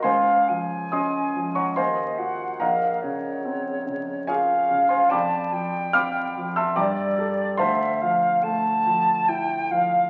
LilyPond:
<<
  \new Staff \with { instrumentName = "Flute" } { \time 3/4 \key des \major \tempo 4 = 72 f''8 aes''4. ees''8 ges''8 | f''8 des''4. f''4 | a''8 g''4 r8 d''4 | e''8 f''8 a''4 g''8 f''8 | }
  \new Staff \with { instrumentName = "Grand piano" } { \time 3/4 \key des \major <c'' f'' aes'' c'''>4 <ees'' aes'' c''' ees'''>8. <des'' ges'' bes'' des'''>16 <c'' f'' aes'' c'''>4 | <bes' ees'' ges'' bes''>2 <aes' des'' f'' aes''>8. <c'' f'' aes'' c'''>16 | <d'' g'' ces''' d'''>4 <f'' ces''' d''' f'''>8. <fes'' a'' c''' fes'''>16 <d'' g'' bes'' d'''>4 | <c'' f'' a'' c'''>2 r4 | }
  \new Staff \with { instrumentName = "Grand piano" } { \clef bass \time 3/4 \key des \major des,8 f8 des'8 f8 ees,8 <f' ges'>8 | bes,,8 des8 c'8 des8 f'8 des8 | f,8 f8 c'8 f8 g,8 <g' a'>8 | d,8 f8 a8 f8 e'8 f8 | }
>>